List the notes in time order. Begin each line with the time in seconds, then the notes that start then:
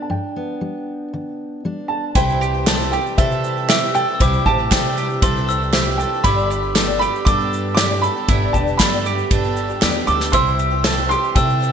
Already playing: D4
0.02 A5
0.10 G2 G5
0.36 B3
0.61 G3
1.14 D3
1.65 G3 D4
1.88 A5
2.15 C2 C3 E3 G3 C4 E4 G4 C5 E5 G5 C6, kick, ride bell, shaker
2.29 shaker
2.41 G4, shaker
2.54 C4 E4 G4
2.67 C3 G3 C4 E4 G4 A4 C5 D5, snare, clap, ride bell, shaker
2.80 shaker
2.92 G3 C4 E4 G4 G5, shaker
3.05 C4 E4 G4, shaker
3.18 C3 G3 C4 E4 A4 C5 D5 E5, kick, ride bell, shaker
3.30 C4 E4 G4, shaker
3.44 G3 C4 E4 G4, shaker
3.57 C4 E4 G4
3.69 C3 G3 C4 E4 G4 C5 E5 E6, snare, clap, ride bell, shaker
3.84 C4 E4 G4
3.95 A4 G5, shaker
4.08 C4 E4 G4
4.15 E6
4.20 C2 C3 G3 C4 D4 E4 G4 C5 E5 D6, kick, ride bell, shaker
4.33 shaker
4.46 A1 G4 A5, kick
4.58 C4 E4 G4
4.71 C3 G3 C4 E4 G4 A4 C5 D5 G5, kick, snare, clap, ride bell, shaker
4.85 shaker
4.97 G3 C4 E4 G4, shaker
5.10 C4 E4 G4, shaker
5.22 C2 G3 C4 E4 A4 C5 E5 C6, kick, ride bell, shaker
5.35 C4 E4 G4, shaker
5.48 G3 C4 E4 G4 E6, shaker
5.61 C4 E4 G4
5.73 C3 G3 C4 E4 G4 C5 E5, snare, clap, ride bell, shaker
5.86 C4 E4 G4
5.98 A4 G5, shaker
6.13 C4 E4 G4
6.24 G1 G2 D3 G3 B3 D4 E4 G4 B4 D5 B5 D6, kick, ride bell, shaker
6.39 shaker
6.50 G4, shaker
6.63 G3 B3 D4 G4
6.75 G2 D3 G3 B3 D4 G4 A4 B4 D5, snare, clap, ride bell, shaker
6.89 shaker
6.99 G3 B3 G4 B5, shaker
7.04 G4
7.15 G3 B3 D4 G4, shaker
7.25 G2 G3 B3 D4 A4 B4 D5 D6, kick, ride bell, shaker
7.39 G3 B3 D4 G4, shaker
7.52 G3 B3 D4 G4, shaker
7.75 G2 D3 G3 B3 D4 G4 D6, snare, clap, ride bell, shaker
7.79 G4 B4 D5
7.89 G3 B3 D4 G4
8.02 A4 B5, shaker
8.15 G3 B3 D4 G4
8.28 G1 G2 D3 G3 B3 D4 E4 G4 B4 E5, kick, ride bell, shaker
8.53 E1 G4 A5, kick, shaker
8.67 G3 B3 D4 G4, shaker
8.77 G2 D3 G3 B3 D4 A4 B4 D5 B5, kick, snare, clap, ride bell, shaker
8.82 G4
8.93 shaker
9.05 G3 B3 D4 G4, shaker
9.18 G3 B3 D4 G4, shaker
9.31 G1 G3 B3 D4 A4 B4 D5, kick, ride bell, shaker
9.44 G3 B3 D4 G4, shaker
9.56 G3 B3 D4 G4, shaker
9.69 G3 B3 D4 G4, shaker
9.82 E2 G2 D3 G3 B3 D4 G4 B4 D5, snare, clap, ride bell, shaker
9.94 G3 B3 D4 G4, shaker
10.07 D2 A4 D6, shaker
10.18 G3 B3 D4 G4, snare
10.32 C2 C3 E3 G3 C4 E4 G4 C5 E5 C6 E6, kick, ride bell, shaker
10.47 shaker
10.59 G4, shaker
10.70 C4 E4 G4
10.84 C3 G3 C4 E4 G4 A4 C5 E5, snare, clap, ride bell, shaker
10.98 shaker
11.08 G3 C4 E4 G4 C6, shaker
11.21 C4 E4 G4, shaker
11.35 C3 G3 C4 E4 A4 C5 E5 G5 E6, kick, ride bell, shaker
11.47 C4 E4 G4, shaker
11.59 G3 C4 E4 G4, shaker